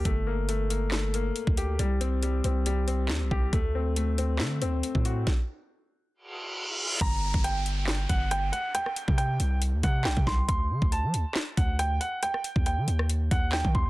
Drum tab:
HH |x---x-x---x-x-x-|x-x-x-x-x-x-----|x---x-x---x-x-x-|----------------|
CP |--------x-------|------------x---|--------x-------|----------------|
SD |--------o-------|------------o---|--------o-------|o---------------|
BD |o------------o--|--------------o-|o------------o--|o---------------|

HH |x---x-x---x-x-x-|x-x-x-x-x-x-----|x---x-x---x-x-x-|x-x-x-x-x-x-----|
CP |--------x-------|------------x---|--------x-------|------------x---|
SD |--------o-------|-r----------o-o-|--------o-------|-r-----r----o---|
BD |o--o------o-----|---o------o--oo-|o--o------o-----|---o------o--oo-|